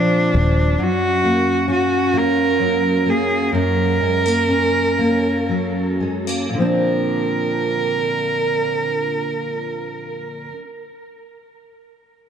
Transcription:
Already playing: steel-string acoustic guitar A#2 F3 C4, cello D4
0.34 fingered electric bass D#1, steel-string acoustic guitar C4
0.78 steel-string acoustic guitar F#2
0.83 cello F#4
1.24 steel-string acoustic guitar A#3
1.68 steel-string acoustic guitar C#4
1.72 cello F#4
2.13 steel-string acoustic guitar A#3
2.18 cello A#4
2.59 steel-string acoustic guitar F#3
3.06 steel-string acoustic guitar A#3, cello G#4
3.52 steel-string acoustic guitar F#2, cello A#4
4.01 steel-string acoustic guitar G#3
4.26 steel-string acoustic guitar A#3
4.49 steel-string acoustic guitar C#4
4.99 steel-string acoustic guitar A#3
5.49 steel-string acoustic guitar F#3
6.00 steel-string acoustic guitar G#3
6.27 steel-string acoustic guitar A#3
6.49 steel-string acoustic guitar A#2
6.54 steel-string acoustic guitar D3 F3, cello A#4
6.60 steel-string acoustic guitar C4 D4

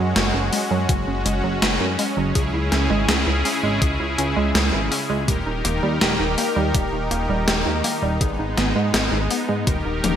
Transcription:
Already playing: analog synth bass F#2, synth arpeggio sound F#3, supersaw synth G#3 C#4 F#4
0.16 analog synth bass F#1, synth arpeggio sound F#4, snare, closed hi-hat
0.34 analog synth bass F#1, synth arpeggio sound C#4
0.52 synth arpeggio sound G#3, open hi-hat
0.71 analog synth bass F#2, synth arpeggio sound F#3
0.89 analog synth bass F#1, synth arpeggio sound F#4, kick, closed hi-hat
1.07 analog synth bass F#1, synth arpeggio sound C#4
1.26 analog synth bass F#1, synth arpeggio sound G#3, closed hi-hat
1.44 analog synth bass F#1, synth arpeggio sound F#3
1.62 analog synth bass F#1, synth arpeggio sound F#4, snare, closed hi-hat
1.80 analog synth bass F#2, synth arpeggio sound C#4
1.99 synth arpeggio sound G#3, open hi-hat
2.17 analog synth bass F#1, synth arpeggio sound F#3
2.35 analog synth bass C#2, supersaw synth C#3 E4 G#4, synth arpeggio sound G#4, kick, closed hi-hat
2.54 analog synth bass C#2, synth arpeggio sound E4
2.72 analog synth bass C#2, synth arpeggio sound C#4, snare, closed hi-hat
2.90 analog synth bass G#1, synth arpeggio sound G#3
3.08 analog synth bass C#2, synth arpeggio sound G#4, snare, closed hi-hat
3.27 analog synth bass C#2, synth arpeggio sound E4
3.45 synth arpeggio sound C#4, open hi-hat
3.63 analog synth bass G#1, synth arpeggio sound G#3
3.82 analog synth bass C#2, synth arpeggio sound G#4, kick, closed hi-hat
4.00 analog synth bass C#2, synth arpeggio sound E4
4.18 analog synth bass C#2, synth arpeggio sound C#4, closed hi-hat
4.37 analog synth bass C#2, synth arpeggio sound G#3
4.55 analog synth bass C#2, synth arpeggio sound G#4, snare, closed hi-hat
4.73 analog synth bass G#1, synth arpeggio sound E4
4.91 synth arpeggio sound C#4, open hi-hat
5.10 analog synth bass C#2, synth arpeggio sound G#3
5.28 analog synth bass D#1, supersaw synth D#3 D#4 G4 A#4, synth arpeggio sound G4, kick, closed hi-hat
5.46 analog synth bass D#1, synth arpeggio sound D#4
5.65 analog synth bass D#1, synth arpeggio sound A#3, closed hi-hat
5.83 analog synth bass D#2, synth arpeggio sound G3
6.01 analog synth bass D#1, synth arpeggio sound G4, snare, closed hi-hat
6.20 analog synth bass D#1, synth arpeggio sound D#4
6.38 synth arpeggio sound A#3, open hi-hat
6.56 analog synth bass D#2, synth arpeggio sound G3
6.74 analog synth bass D#1, synth arpeggio sound G4, kick, closed hi-hat
6.93 analog synth bass D#1, synth arpeggio sound D#4
7.11 analog synth bass D#1, synth arpeggio sound A#3, closed hi-hat
7.29 analog synth bass D#1, synth arpeggio sound G3
7.48 analog synth bass D#1, synth arpeggio sound G4, snare, closed hi-hat
7.66 analog synth bass D#2, synth arpeggio sound D#4
7.84 synth arpeggio sound A#3, open hi-hat
8.02 analog synth bass D#1, synth arpeggio sound G3
8.21 analog synth bass G#1, supersaw synth G#3 B3, synth arpeggio sound G#4, kick, closed hi-hat
8.39 analog synth bass G#1, synth arpeggio sound D#4
8.57 analog synth bass G#1, synth arpeggio sound B3, snare, closed hi-hat
8.76 analog synth bass G#2, synth arpeggio sound G#3
8.94 analog synth bass G#1, synth arpeggio sound G#4, snare, closed hi-hat
9.12 analog synth bass G#1, synth arpeggio sound D#4
9.31 synth arpeggio sound B3, open hi-hat
9.49 analog synth bass G#2, synth arpeggio sound G#3
9.67 analog synth bass D#1, supersaw synth D#3 G4 A#4, synth arpeggio sound G4, kick, closed hi-hat
9.85 analog synth bass D#1, synth arpeggio sound D#4
10.04 analog synth bass D#1, synth arpeggio sound A#3, closed hi-hat, high tom

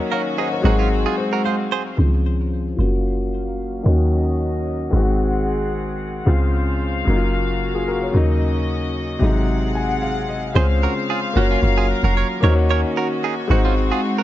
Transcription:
Already playing: string section D#3 C#4 F#4, grand piano F#3 A#3 C#4 D#4 A#4
0.11 clean electric guitar F#4 A#4, grand piano C#5 F5
0.38 clean electric guitar D#4 G#4, grand piano C5 D#5
0.52 grand piano A#4 C#5
0.62 log drum bass G#1, grand piano F#3 G#3 C4 D#4, string section G#3 C4, clean electric guitar F#4
0.66 clean electric guitar D#4, grand piano G#4
0.79 clean electric guitar C#4 F4
1.06 clean electric guitar F4 G#4
1.18 grand piano C5
1.33 clean electric guitar F#4 A#4
1.45 clean electric guitar G#4 C5, grand piano F5
1.72 clean electric guitar G#4 C5
1.97 log drum bass C#2, grand piano D#3 C4 C#4 G#4, string section F4 C5 F5
2.04 grand piano F3
2.76 log drum bass F#1, string section F#3 A#3 F5, grand piano A#3 C#4 F4
2.81 grand piano F#4
3.84 log drum bass D#2, grand piano D#3 A#3 C#4, string section C#4 D#5
3.89 grand piano F#4
4.91 log drum bass G#1, grand piano D#3 G#3 C4, string section C4 G#4 F#5
4.96 grand piano F#4
6.26 log drum bass C#2, grand piano C#3 G#3 C4 F4, string section C#3 C5 F5
7.05 log drum bass F#1, grand piano C#3 F#3 A#3, string section A#3 F#4
7.10 grand piano D#4
7.16 grand piano F4
7.75 grand piano F4 G#4
7.88 grand piano F#4 A#4
8.02 grand piano A#4 C#5
8.12 log drum bass D#2, grand piano C#3 F#3 A#3, string section C#4 F#4 D#5
8.17 grand piano D#4
9.19 log drum bass G#1, grand piano C3 F#3 G#3, string section C4 G#4 F#5
9.24 grand piano D#4
9.75 grand piano G#5
9.89 grand piano F#5
10.02 grand piano F5
10.29 grand piano D#5
10.54 log drum bass C#2, string section C#3 C5 F5, grand piano G#3 C4 C#4 F4 C5, clean electric guitar G#4 C5
10.83 clean electric guitar F#4 A#4
11.10 clean electric guitar F4 G#4
11.34 log drum bass F#1, string section F#3 A#4, grand piano A#3 C#4 F4 F#4, clean electric guitar F#4
11.38 clean electric guitar C#4, grand piano C#5
11.51 clean electric guitar C#4 F4
11.63 log drum bass F#1
11.78 clean electric guitar F4 G#4
12.03 log drum bass F1, clean electric guitar F#4 A#4
12.17 clean electric guitar A#4 C#5
12.41 log drum bass D#2, string section D#3 C#4 F#4, grand piano A#3 C#4 D#4 F#4, clean electric guitar A#4 C#5
12.45 grand piano C5
12.52 grand piano C#5
12.71 clean electric guitar A#4 C#5
12.97 clean electric guitar F#4 A#4
13.24 clean electric guitar D#4 G#4
13.48 log drum bass G#1, grand piano G#3 C4 D#4 F#4, string section G#3 C4, clean electric guitar F#4
13.52 clean electric guitar D#4, grand piano C5
13.65 clean electric guitar C#4 F4
13.92 clean electric guitar F4 G#4
14.18 clean electric guitar F#4 A#4

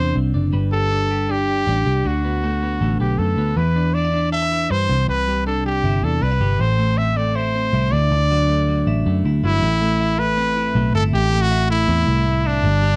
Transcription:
Already playing: picked electric bass E2, clean electric guitar C3 C4 D4 G4, trumpet C5
0.16 picked electric bass C2, clean electric guitar C4
0.34 picked electric bass F#1, clean electric guitar D4
0.53 picked electric bass G1, clean electric guitar G3 B4
0.72 clean electric guitar G4, trumpet A4
0.91 clean electric guitar D4
1.11 clean electric guitar G4
1.29 clean electric guitar D4, trumpet G4
1.49 clean electric guitar G4
1.67 picked electric bass A1, clean electric guitar D4
1.86 picked electric bass C2, clean electric guitar G4
2.05 picked electric bass D2, clean electric guitar D3 F#4, trumpet F#4
2.24 clean electric guitar B3
2.44 clean electric guitar A3
2.63 clean electric guitar B3
2.81 picked electric bass A1, clean electric guitar A3
3.00 picked electric bass B1, clean electric guitar B3, trumpet G4
3.18 picked electric bass F#2, clean electric guitar A3, trumpet A4
3.38 picked electric bass D2, clean electric guitar B3
3.57 picked electric bass E2, clean electric guitar E3, trumpet B4
3.76 clean electric guitar D4
3.94 clean electric guitar D4, trumpet D5
4.05 clean electric guitar E4
4.14 clean electric guitar D4
4.32 clean electric guitar A4, trumpet E5
4.42 clean electric guitar B4
4.52 clean electric guitar E4
4.71 picked electric bass G2, clean electric guitar B4, trumpet C5
4.89 picked electric bass C2, clean electric guitar C3
5.08 picked electric bass C2, clean electric guitar C3, trumpet B4
5.28 clean electric guitar G3
5.46 clean electric guitar D4, trumpet A4
5.66 clean electric guitar G3, trumpet G4
5.84 picked electric bass G1, clean electric guitar E4
6.03 picked electric bass E2, clean electric guitar D4, trumpet A4
6.22 picked electric bass C2, clean electric guitar D4, trumpet B4
6.32 clean electric guitar E4
6.40 picked electric bass G1, clean electric guitar G3
6.59 picked electric bass A1, clean electric guitar A2, trumpet C5
6.79 clean electric guitar A3
6.98 clean electric guitar C4, trumpet E5
7.17 clean electric guitar A3, trumpet D5
7.36 clean electric guitar E4, trumpet C5
7.55 clean electric guitar C4
7.73 picked electric bass C2, clean electric guitar E4
7.92 picked electric bass D2, clean electric guitar D3, trumpet D5
8.11 picked electric bass D2, clean electric guitar D3
8.31 clean electric guitar F#3
8.49 clean electric guitar A3
8.68 clean electric guitar F#3
8.87 picked electric bass A1, clean electric guitar E4
9.06 picked electric bass F#2, clean electric guitar A3
9.25 picked electric bass D2, clean electric guitar E4
9.43 picked electric bass G1, clean electric guitar F#3, trumpet E4
9.63 picked electric bass A1, clean electric guitar A2
9.81 clean electric guitar A3
10.00 clean electric guitar E4
10.19 clean electric guitar A3, trumpet B4
10.37 clean electric guitar C4
10.56 clean electric guitar E4
10.75 picked electric bass B1, clean electric guitar A3
10.94 picked electric bass G1, clean electric guitar E4, trumpet A4
11.13 picked electric bass A1, clean electric guitar A2, trumpet G4
11.32 clean electric guitar A3
11.41 trumpet F#4
11.51 clean electric guitar E4
11.70 clean electric guitar A3, trumpet E4
11.88 picked electric bass E2, clean electric guitar C4
12.07 picked electric bass C2, clean electric guitar E4
12.26 clean electric guitar A3
12.45 trumpet D4, clean electric guitar E4
12.64 picked electric bass G1, clean electric guitar G2
12.83 clean electric guitar G3

